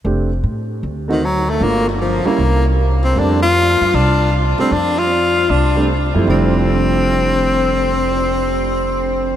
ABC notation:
X:1
M:4/4
L:1/8
Q:"Swing" 1/4=154
K:F
V:1 name="Tenor saxophone"
z4 z _E, ^F, A, | B, D, F, B,2 z2 C | D F3 D2 z C | D F3 D2 z2 |
C8- | C8 |]
V:2 name="Grand piano"
[A,CDG] z4 [A,C_E^F] z2 | [A,B,DF] z2 [G,B,_DE] z4 | [G,A,CD] z6 [G,A,CD] | z4 z [G,A,CD] z [F,,G,A,CE] |
[F,,F,G,A,D]8- | [F,,F,G,A,D]8 |]
V:3 name="Upright bass" clef=bass
F,,,2 A,,2 D,,4 | G,,,3 z C,,4 | F,,3 _G,, C,,3 z | F,,4 C,,3 _G,, |
F,,,8- | F,,,8 |]